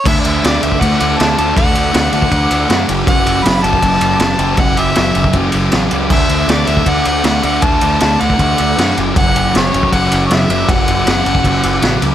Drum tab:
CC |x---------------|----------------|----------------|----------------|
RD |--x-x-x-x-x-x-x-|x-x-x-x-x-x-x-x-|x-x-x-x-x-x-x-x-|x-x-x-x-x-x-x-x-|
SD |----o-------o---|----o-------o---|----o-------o---|----o-------o---|
BD |o------oo-------|o------oo-------|o------oo-------|o------oo-------|

CC |x---------------|----------------|----------------|----------------|
RD |--x-x-x-x-x-x-x-|x-x-x-x-x-x-x-x-|x-x-x-x-x-x-x-x-|x-x-x-x-x-x-x-x-|
SD |----o-------o---|----o-------o---|----o-------o---|----o-------o---|
BD |o------oo-------|o------oo-------|o------oo-------|o------oo-------|